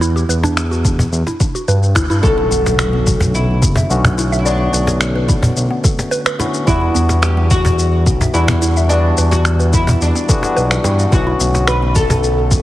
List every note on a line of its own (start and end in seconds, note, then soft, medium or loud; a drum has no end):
0.00 0.23 E2 medium
0.00 1.64 E4 medium
0.00 0.14 E4 loud
0.00 shaker soft
0.16 0.23 G4 medium
0.16 shaker soft
0.29 1.06 E2 medium
0.29 0.42 B4 medium
0.29 shaker medium
0.43 0.70 D4 loud
0.43 cajon slap medium
0.43 shaker soft
0.57 finger snap medium
0.57 shaker soft
0.71 1.25 F#4 medium
0.71 shaker soft
0.85 kick loud
0.85 shaker medium
0.99 cajon bass medium
0.99 shaker soft
1.12 1.23 E2 medium
1.12 shaker soft
1.27 1.39 E4 medium
1.27 cajon slap medium
1.27 shaker soft
1.40 1.53 D4 medium
1.40 kick loud
1.40 shaker medium
1.55 1.62 F#4 medium
1.55 shaker soft
1.68 1.97 G2 medium
1.68 1.82 B4 medium
1.68 shaker soft
1.83 shaker soft
1.95 2.06 D2 loud
1.95 2.09 E4 medium
1.95 finger snap medium
1.95 kick medium
1.95 cajon slap medium
1.95 shaker medium
2.10 2.20 G2 loud
2.10 2.22 E4 loud
2.10 cajon slap soft
2.10 shaker soft
2.21 2.44 B1 medium
2.21 3.86 D3 loud
2.21 3.86 A3 medium
2.21 3.87 B3 medium
2.21 3.87 C#4 medium
2.21 2.36 E4 medium
2.21 3.88 F#4 loud
2.21 2.75 A4 loud
2.21 kick loud
2.21 impact medium
2.21 shaker soft
2.38 2.50 E4 medium
2.51 3.64 B1 medium
2.51 2.65 B3 medium
2.51 shaker medium
2.66 cajon slap medium
2.66 shaker soft
2.79 2.93 F#4 medium
2.79 3.34 F#4 loud
2.79 finger snap medium
2.79 shaker soft
2.93 3.06 B3 medium
3.07 kick loud
3.07 shaker medium
3.20 cajon bass loud
3.20 cajon slap medium
3.20 shaker soft
3.35 4.35 E4 loud
3.35 shaker soft
3.62 3.83 F#1 loud
3.62 3.76 B3 medium
3.62 kick loud
3.62 shaker medium
3.76 4.03 E5 medium
3.76 cajon bass loud
3.76 shaker soft
3.90 4.68 B1 medium
3.90 4.42 D3 medium
3.90 4.42 A3 medium
3.90 4.42 B3 medium
3.90 4.43 C#4 medium
3.90 4.43 F#4 medium
3.90 shaker soft
4.04 4.17 B3 medium
4.04 finger snap medium
4.04 cajon bass medium
4.04 shaker soft
4.18 4.32 E4 loud
4.18 shaker medium
4.32 4.40 E5 medium
4.32 shaker soft
4.39 4.45 E4 medium
4.44 5.81 D3 medium
4.44 5.81 A3 medium
4.44 5.81 B3 medium
4.44 5.25 D4 medium
4.44 5.83 F#4 medium
4.44 5.82 C#5 medium
4.44 4.59 D5 medium
4.44 shaker soft
4.73 5.51 B1 medium
4.73 5.14 B4 medium
4.73 shaker medium
4.87 cajon slap medium
4.87 shaker soft
5.01 finger snap medium
5.01 shaker soft
5.16 5.27 B4 medium
5.28 5.42 E4 medium
5.28 kick loud
5.28 shaker medium
5.43 cajon bass loud
5.43 cajon slap medium
5.43 shaker soft
5.56 5.67 B1 medium
5.56 shaker soft
5.70 5.78 B3 medium
5.84 6.11 A4 medium
5.84 kick loud
5.84 shaker medium
5.99 cajon slap medium
5.99 shaker soft
6.11 6.20 B4 loud
6.11 shaker soft
6.26 6.38 B4 medium
6.26 finger snap medium
6.26 shaker soft
6.39 6.64 D3 medium
6.39 6.64 A3 medium
6.39 6.64 B3 medium
6.39 6.65 C#4 medium
6.39 6.53 E4 medium
6.39 6.65 F#4 medium
6.39 cajon slap medium
6.39 shaker medium
6.54 shaker soft
6.66 6.89 E2 medium
6.66 8.30 E3 loud
6.66 8.31 G3 medium
6.66 8.31 B3 medium
6.66 8.32 D4 medium
6.66 7.19 E4 loud
6.66 6.80 E4 medium
6.66 kick loud
6.66 shaker soft
6.70 8.32 F#4 loud
6.81 6.94 E4 medium
6.95 8.08 E2 medium
6.95 7.09 B3 medium
6.95 shaker medium
7.09 cajon slap medium
7.09 shaker soft
7.22 7.49 G4 loud
7.22 7.37 G4 medium
7.22 finger snap medium
7.22 shaker soft
7.37 7.50 B3 medium
7.51 8.30 F#4 loud
7.51 kick loud
7.51 shaker medium
7.65 cajon bass medium
7.65 cajon slap medium
7.65 shaker soft
7.79 shaker soft
8.07 8.27 B1 loud
8.07 8.20 B3 medium
8.07 kick loud
8.07 shaker medium
8.21 8.47 E5 medium
8.21 cajon bass medium
8.21 shaker soft
8.33 9.12 E2 medium
8.33 8.86 E3 medium
8.33 8.86 G3 medium
8.33 8.87 B3 medium
8.33 8.87 D4 medium
8.33 8.89 E4 loud
8.33 8.87 F#4 medium
8.33 shaker soft
8.48 8.61 B3 medium
8.48 finger snap medium
8.48 cajon bass loud
8.48 shaker soft
8.62 8.76 E4 loud
8.62 shaker medium
8.77 8.84 E5 medium
8.77 shaker soft
8.89 10.25 E3 medium
8.89 10.25 G3 medium
8.89 10.26 B3 medium
8.89 9.29 D4 medium
8.89 10.26 D4 medium
8.89 10.27 F#4 medium
8.89 9.04 D5 medium
8.89 shaker soft
9.18 9.96 E2 medium
9.18 9.59 B4 medium
9.18 shaker medium
9.31 9.74 F#4 loud
9.31 cajon slap medium
9.31 shaker soft
9.45 finger snap medium
9.45 shaker soft
9.60 9.72 B4 medium
9.60 shaker soft
9.73 9.87 E4 medium
9.73 10.02 E4 medium
9.73 kick loud
9.73 shaker medium
9.87 cajon bass loud
9.87 cajon slap medium
9.87 shaker soft
10.01 10.12 E2 medium
10.01 10.81 D4 medium
10.01 shaker soft
10.15 10.23 B3 medium
10.15 shaker soft
10.28 10.39 E3 medium
10.28 10.40 G3 medium
10.28 10.40 B3 medium
10.28 10.40 D4 medium
10.28 10.41 F#4 loud
10.28 10.55 A4 medium
10.28 kick loud
10.28 shaker medium
10.41 11.08 E3 medium
10.41 11.09 G3 medium
10.41 11.09 B3 medium
10.41 11.09 D4 medium
10.41 cajon slap medium
10.41 shaker soft
10.46 11.10 F#4 medium
10.57 10.78 B1 medium
10.57 10.65 B4 loud
10.57 shaker soft
10.71 10.83 B4 medium
10.71 finger snap medium
10.71 shaker soft
10.84 11.05 G2 medium
10.84 10.98 E4 medium
10.84 cajon slap medium
10.84 shaker medium
10.99 shaker soft
11.10 11.33 B1 loud
11.10 12.62 D3 medium
11.10 12.62 A3 medium
11.10 12.62 B3 medium
11.10 12.62 C#4 medium
11.10 11.25 E4 medium
11.10 11.67 F#4 medium
11.10 kick loud
11.10 shaker soft
11.14 12.62 F#4 loud
11.27 11.39 E4 medium
11.40 12.53 B1 medium
11.40 11.54 B3 medium
11.40 shaker medium
11.55 cajon slap medium
11.55 shaker soft
11.67 11.81 F#4 medium
11.67 11.95 B4 loud
11.67 finger snap medium
11.67 shaker soft
11.82 11.95 B3 medium
11.95 12.62 A4 loud
11.95 kick loud
11.95 shaker medium
12.10 cajon bass medium
12.10 cajon slap medium
12.10 shaker soft
12.24 shaker soft
12.51 12.62 F#1 loud
12.51 12.62 B3 medium
12.51 kick loud
12.51 shaker medium